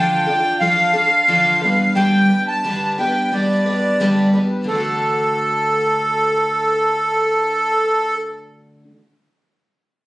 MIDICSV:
0, 0, Header, 1, 3, 480
1, 0, Start_track
1, 0, Tempo, 678733
1, 1385, Time_signature, 4, 2, 24, 8
1, 7114, End_track
2, 0, Start_track
2, 0, Title_t, "Accordion"
2, 0, Program_c, 0, 21
2, 0, Note_on_c, 0, 79, 81
2, 398, Note_off_c, 0, 79, 0
2, 425, Note_on_c, 0, 77, 96
2, 1138, Note_off_c, 0, 77, 0
2, 1149, Note_on_c, 0, 77, 68
2, 1370, Note_off_c, 0, 77, 0
2, 1385, Note_on_c, 0, 79, 92
2, 1720, Note_off_c, 0, 79, 0
2, 1751, Note_on_c, 0, 81, 93
2, 2083, Note_off_c, 0, 81, 0
2, 2115, Note_on_c, 0, 79, 77
2, 2354, Note_on_c, 0, 74, 58
2, 2357, Note_off_c, 0, 79, 0
2, 3041, Note_off_c, 0, 74, 0
2, 3306, Note_on_c, 0, 69, 83
2, 5762, Note_off_c, 0, 69, 0
2, 7114, End_track
3, 0, Start_track
3, 0, Title_t, "Twelve-string acoustic guitar"
3, 0, Program_c, 1, 25
3, 0, Note_on_c, 1, 50, 60
3, 0, Note_on_c, 1, 53, 66
3, 0, Note_on_c, 1, 62, 69
3, 0, Note_on_c, 1, 65, 64
3, 0, Note_on_c, 1, 69, 77
3, 177, Note_off_c, 1, 69, 0
3, 185, Note_off_c, 1, 50, 0
3, 186, Note_off_c, 1, 53, 0
3, 186, Note_on_c, 1, 69, 60
3, 187, Note_off_c, 1, 62, 0
3, 187, Note_off_c, 1, 65, 0
3, 195, Note_on_c, 1, 65, 49
3, 206, Note_on_c, 1, 62, 44
3, 422, Note_off_c, 1, 62, 0
3, 424, Note_on_c, 1, 53, 52
3, 426, Note_off_c, 1, 65, 0
3, 426, Note_off_c, 1, 69, 0
3, 430, Note_on_c, 1, 62, 62
3, 435, Note_on_c, 1, 65, 65
3, 442, Note_on_c, 1, 69, 68
3, 650, Note_off_c, 1, 69, 0
3, 655, Note_off_c, 1, 65, 0
3, 659, Note_on_c, 1, 69, 54
3, 664, Note_on_c, 1, 65, 48
3, 665, Note_off_c, 1, 53, 0
3, 665, Note_off_c, 1, 62, 0
3, 673, Note_on_c, 1, 62, 41
3, 900, Note_off_c, 1, 62, 0
3, 900, Note_off_c, 1, 65, 0
3, 900, Note_on_c, 1, 50, 73
3, 902, Note_off_c, 1, 69, 0
3, 907, Note_on_c, 1, 53, 76
3, 909, Note_on_c, 1, 62, 75
3, 909, Note_on_c, 1, 65, 68
3, 911, Note_on_c, 1, 69, 81
3, 1140, Note_off_c, 1, 69, 0
3, 1142, Note_off_c, 1, 50, 0
3, 1143, Note_on_c, 1, 71, 48
3, 1144, Note_off_c, 1, 62, 0
3, 1146, Note_off_c, 1, 53, 0
3, 1147, Note_off_c, 1, 65, 0
3, 1152, Note_on_c, 1, 62, 45
3, 1157, Note_on_c, 1, 59, 39
3, 1160, Note_on_c, 1, 55, 38
3, 1375, Note_off_c, 1, 55, 0
3, 1380, Note_on_c, 1, 43, 67
3, 1381, Note_off_c, 1, 59, 0
3, 1383, Note_off_c, 1, 62, 0
3, 1383, Note_on_c, 1, 55, 66
3, 1384, Note_off_c, 1, 71, 0
3, 1384, Note_on_c, 1, 50, 57
3, 1389, Note_on_c, 1, 59, 73
3, 1391, Note_on_c, 1, 62, 72
3, 1392, Note_on_c, 1, 71, 71
3, 1612, Note_off_c, 1, 71, 0
3, 1618, Note_off_c, 1, 62, 0
3, 1620, Note_on_c, 1, 71, 46
3, 1622, Note_off_c, 1, 43, 0
3, 1622, Note_off_c, 1, 59, 0
3, 1624, Note_off_c, 1, 50, 0
3, 1624, Note_off_c, 1, 55, 0
3, 1626, Note_on_c, 1, 62, 45
3, 1631, Note_on_c, 1, 59, 37
3, 1638, Note_on_c, 1, 55, 39
3, 1861, Note_off_c, 1, 55, 0
3, 1861, Note_off_c, 1, 59, 0
3, 1862, Note_off_c, 1, 71, 0
3, 1865, Note_on_c, 1, 43, 57
3, 1866, Note_off_c, 1, 62, 0
3, 1868, Note_on_c, 1, 50, 65
3, 1869, Note_on_c, 1, 59, 78
3, 1870, Note_on_c, 1, 55, 64
3, 1875, Note_on_c, 1, 62, 68
3, 1880, Note_on_c, 1, 71, 71
3, 2098, Note_off_c, 1, 71, 0
3, 2104, Note_off_c, 1, 62, 0
3, 2105, Note_off_c, 1, 43, 0
3, 2106, Note_off_c, 1, 50, 0
3, 2107, Note_off_c, 1, 55, 0
3, 2107, Note_off_c, 1, 59, 0
3, 2107, Note_on_c, 1, 71, 51
3, 2112, Note_on_c, 1, 62, 45
3, 2118, Note_on_c, 1, 59, 46
3, 2122, Note_on_c, 1, 55, 45
3, 2334, Note_off_c, 1, 55, 0
3, 2343, Note_on_c, 1, 55, 52
3, 2344, Note_off_c, 1, 59, 0
3, 2344, Note_off_c, 1, 62, 0
3, 2346, Note_off_c, 1, 71, 0
3, 2353, Note_on_c, 1, 59, 48
3, 2353, Note_on_c, 1, 62, 58
3, 2360, Note_on_c, 1, 71, 53
3, 2578, Note_off_c, 1, 71, 0
3, 2580, Note_off_c, 1, 62, 0
3, 2584, Note_off_c, 1, 55, 0
3, 2586, Note_on_c, 1, 71, 44
3, 2588, Note_off_c, 1, 59, 0
3, 2589, Note_on_c, 1, 62, 43
3, 2596, Note_on_c, 1, 59, 37
3, 2600, Note_on_c, 1, 55, 36
3, 2825, Note_off_c, 1, 59, 0
3, 2825, Note_off_c, 1, 71, 0
3, 2826, Note_off_c, 1, 55, 0
3, 2827, Note_off_c, 1, 62, 0
3, 2829, Note_on_c, 1, 43, 65
3, 2831, Note_on_c, 1, 50, 61
3, 2833, Note_on_c, 1, 59, 73
3, 2834, Note_on_c, 1, 55, 72
3, 2837, Note_on_c, 1, 62, 70
3, 2841, Note_on_c, 1, 71, 67
3, 3058, Note_off_c, 1, 71, 0
3, 3065, Note_off_c, 1, 62, 0
3, 3066, Note_off_c, 1, 43, 0
3, 3066, Note_on_c, 1, 71, 52
3, 3068, Note_off_c, 1, 50, 0
3, 3069, Note_off_c, 1, 55, 0
3, 3069, Note_off_c, 1, 59, 0
3, 3073, Note_on_c, 1, 62, 42
3, 3077, Note_on_c, 1, 59, 48
3, 3081, Note_on_c, 1, 55, 39
3, 3281, Note_on_c, 1, 50, 69
3, 3305, Note_off_c, 1, 71, 0
3, 3309, Note_off_c, 1, 62, 0
3, 3311, Note_off_c, 1, 55, 0
3, 3311, Note_off_c, 1, 59, 0
3, 3314, Note_on_c, 1, 57, 62
3, 3335, Note_on_c, 1, 62, 67
3, 3361, Note_on_c, 1, 66, 65
3, 3382, Note_on_c, 1, 69, 68
3, 6244, Note_off_c, 1, 50, 0
3, 6276, Note_off_c, 1, 57, 0
3, 6298, Note_off_c, 1, 62, 0
3, 6313, Note_off_c, 1, 66, 0
3, 6324, Note_off_c, 1, 69, 0
3, 7114, End_track
0, 0, End_of_file